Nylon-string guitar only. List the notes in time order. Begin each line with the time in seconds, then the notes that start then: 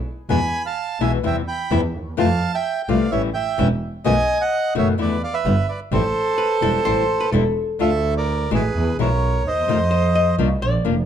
0.29 B2 E3 G#3 B3 E4
1.01 B2 E3 G#3 B3 E4
1.23 C3 E3 G3 B3 E4
1.71 C3 E3 G3 B3 E4
2.17 C3 E3 A3 C4 F4
2.88 C3 E3 A3 C4 F4
3.12 E3 G3 C#4 E4
3.58 E3 G3 C#4 E4
4.04 B2 D#3 A3 B3 F#4
4.75 B2 D#3 A3 B3 F#4
4.98 D3 A3 B3 E4
5.45 G3 B3 F4
5.92 E3 G3 C4 E4
6.61 E3 G3 C4 E4
6.85 E3 G3 C4 E4
7.33 E3 G3 C4 E4
7.79 D3 A3 D4 F4
8.51 B2 E3 G#3 B3 E4
8.99 B2 E3 G#3 B3 E4
9.68 C3 D#3 A3 C4 F4
10.39 F3 A#3 D4 F4
10.85 F3 A#3 D4 F4